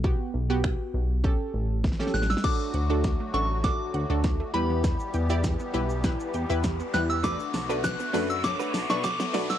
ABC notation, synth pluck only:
X:1
M:4/4
L:1/16
Q:1/4=100
K:D
V:1 name="Synth pluck"
[B,FG]2 z [B,FG]4- [B,FG] [CGA]4 z [CGA]2 z | [DFA]2 z [DFA]2 z [DFA] z [DFA]2 z [DFA]2 z [EGB]2- | [EGB]2 z [EGd]2 z [EGB] z [EGB]2 z [EGB]2 z [EGB] z | [DAB]2 z [DAB]2 z [DAB] z [DAc]2 z [DAB]2 z [DAd] z |]